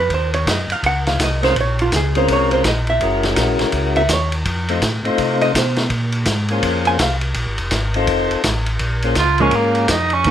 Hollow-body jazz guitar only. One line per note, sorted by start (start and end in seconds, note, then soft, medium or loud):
0.00 0.12 B4 medium
0.14 0.34 C5 medium
0.35 0.50 C#5 medium
0.50 0.72 D#5 loud
0.72 0.84 F5 loud
0.86 1.07 F#5 loud
1.08 1.20 F5 medium
1.24 1.44 D#5 medium
1.44 1.57 C5 medium
1.61 1.81 C#5 medium
1.82 1.94 F4 medium
1.96 2.16 G#4 medium
2.18 2.30 C5 medium
2.33 2.53 C#5 loud
2.53 2.65 C5 medium
2.68 2.88 D#5 medium
2.90 3.35 E5 medium
3.97 4.10 E5 medium
4.13 4.34 C#5 medium
5.42 5.55 D#5 loud
5.58 5.79 C5 medium
6.87 7.00 G#5 loud
7.02 7.15 F5 medium
9.40 9.52 F3 medium
9.40 9.53 G#3 medium
9.40 9.53 C#4 medium
10.27 10.31 D#3 soft
10.27 10.31 A#3 soft